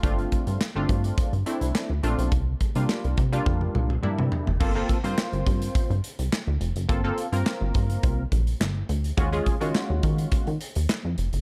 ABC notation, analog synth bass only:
X:1
M:4/4
L:1/16
Q:1/4=105
K:Gdor
V:1 name="Analog synth bass" clef=bass
G,,,2 z G,, z G,,, G,,2 G,, G,, z C,, z D,, B,,, =B,,, | C,,2 z C, z C,, C,2 F,,2 C,,2 z C, z ^F,,, | G,,,2 z G,, z G,,, G,,2 G,, G,, z C,, z D,, F,,, ^F,,, | G,,,2 z G,, z G,,, G,,2 C,,2 B,,,2 G,,,2 D,,2 |
_E,,2 z _E, z E,, E,2 E, E, z E,, z F,, F,,, _G,,, |]